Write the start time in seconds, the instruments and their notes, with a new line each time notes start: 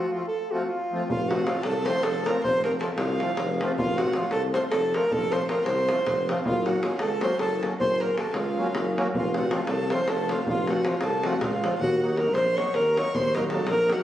Already playing: alto saxophone F#4
0.12 accordion F3 A3 C4 F4, alto saxophone F4
0.28 alto saxophone A4
0.51 accordion F3 A3 C4 F4, alto saxophone F#4
0.69 alto saxophone F4
0.91 accordion F3 A3 C4 F4
1.09 tuba F1, alto saxophone F4, violin F5, davul low
1.29 accordion F3 A3 C4 F4, alto saxophone F#4, violin F#5, davul high
1.39 davul high
1.44 accordion F3 A3 C4 F4, alto saxophone F4, violin F5, davul high
1.62 tuba C2, alto saxophone A4, violin A5, davul high
1.85 accordion F3 A3 C4 F4, alto saxophone C5, violin C6, davul high
1.95 davul high
2.03 tuba F1, alto saxophone A4, violin A5, davul high
2.26 accordion F3 A3 C4 F4, alto saxophone A#4, violin A#5, davul high
2.43 tuba F1, alto saxophone C5, violin C6, davul low
2.62 accordion F3 A3 C4 F4, alto saxophone A#4, violin A#5, davul high
2.73 davul high
2.80 accordion F3 A3 C4 F4, alto saxophone A4, violin A5, davul high
2.96 tuba C2, alto saxophone F4, violin F5, davul high
3.20 accordion F3 A3 C4 F4, davul high
3.29 davul high
3.37 tuba F1, davul high
3.60 accordion F3 A3 C4 F4, davul high
3.78 tuba F1, alto saxophone F4, violin F5, davul low
3.97 accordion F3 A3 C4 F4, alto saxophone F#4, violin F#5, davul high
4.06 davul high
4.13 accordion F3 A3 C4 F4, alto saxophone F4, violin F5, davul high
4.31 tuba C2, alto saxophone A4, violin A5, davul high
4.53 accordion F3 A3 C4 F4, alto saxophone C5, violin C6, davul high
4.63 davul high
4.70 tuba F1, alto saxophone A4, violin A5, davul high
4.94 accordion F3 A3 C4 F4, alto saxophone A#4, violin A#5, davul high
5.11 tuba F1, alto saxophone A4, violin A5, davul low
5.22 davul high
5.31 accordion F3 A3 C4 F4, alto saxophone C5, violin C6, davul high
5.41 davul high
5.48 accordion F3 A3 C4 F4, alto saxophone A#4, violin A#5, davul high
5.58 davul high
5.64 tuba C2, alto saxophone C5, violin C6, davul high
5.77 davul high
5.88 accordion F3 A3 C4 F4, davul high
5.98 davul high
6.05 tuba F1, davul high, davul low
6.18 davul high
6.28 accordion F3 A3 C4 F4, davul high
6.38 davul high
6.45 tuba F#1, alto saxophone F4, violin F5, davul low
6.65 accordion F#3 A#3 C#4 F#4, alto saxophone F#4, violin F#5, davul high
6.74 davul high
6.82 accordion F#3 A#3 C#4 F#4, alto saxophone F4, violin F5, davul high
6.99 tuba C#2, alto saxophone A4, violin A5, davul high
7.21 accordion F#3 A#3 C#4 F#4, alto saxophone C5, violin C6, davul high
7.31 davul high
7.39 tuba F#1, alto saxophone A4, violin A5, davul high
7.63 accordion F#3 A#3 C#4 F#4, davul high
7.80 tuba F#1, alto saxophone C5, violin C6, davul low
8.00 accordion F#3 A#3 C#4 F#4, alto saxophone A#4, violin A#5, davul high
8.09 davul high
8.16 accordion F#3 A#3 C#4 F#4, alto saxophone A4, violin A5, davul high
8.33 tuba C#2, alto saxophone F4, violin F5, davul high
8.56 accordion F#3 A#3 C#4 F#4
8.66 davul high
8.74 tuba F#1, davul high
8.97 accordion F#3 A#3 C#4 F#4, davul high
9.14 tuba F1, alto saxophone F4, violin F5, davul low
9.34 accordion F3 A3 C4 F4, alto saxophone F#4, violin F#5, davul high
9.43 davul high
9.50 accordion F3 A3 C4 F4, alto saxophone F4, violin F5, davul high
9.67 tuba C2, alto saxophone A4, violin A5, davul high
9.90 accordion F3 A3 C4 F4, alto saxophone C5, violin C6, davul high
9.99 davul high
10.08 tuba F1, alto saxophone A4, violin A5, davul high
10.29 accordion F3 A3 C4 F4, alto saxophone F4, violin F5, davul high
10.46 tuba F1, alto saxophone F4, violin F5, davul low
10.58 davul high
10.67 accordion F3 A3 C4 F4, alto saxophone F#4, violin F#5, davul high
10.76 davul high
10.84 accordion F3 A3 C4 F4, alto saxophone F4, violin F5, davul high
10.93 davul high
11.01 tuba C2, alto saxophone A4, violin A5, davul high
11.13 davul high
11.23 accordion F3 A3 C4 F4, alto saxophone F#4, violin F#5, davul high
11.40 tuba C#2, violin F5, davul high, davul low
11.45 alto saxophone F4
11.53 davul high
11.63 accordion F3 A3 C4 F4, davul high
11.79 tuba D#2, alto saxophone F#4, violin F#5, davul low
12.00 accordion F#3 A#3 D#4 F#4, alto saxophone F#4, violin F#5
12.10 davul high
12.16 accordion F#3 A#3 D#4 F#4, alto saxophone A#4, violin A#5, davul high
12.33 tuba A#1, alto saxophone C5, violin C6, davul high
12.56 accordion F#3 A#3 D#4 F#4, alto saxophone C#5, violin C#6, davul high
12.74 tuba D#2, alto saxophone A#4, violin A#5, davul high
12.96 accordion F#3 A#3 D#4 F#4, alto saxophone C#5, violin C#6, davul high
13.14 tuba D#2, alto saxophone C5, violin C6, davul low
13.34 accordion F#3 A#3 D#4 F#4, alto saxophone A#4, violin A#5, davul high
13.43 davul high
13.50 accordion F#3 A#3 D#4 F#4, alto saxophone A4, violin A5, davul high
13.67 tuba A#1, alto saxophone A#4, violin A#5, davul high
13.90 accordion F#3 A#3 D#4 F#4, alto saxophone F#4, violin F#5, davul high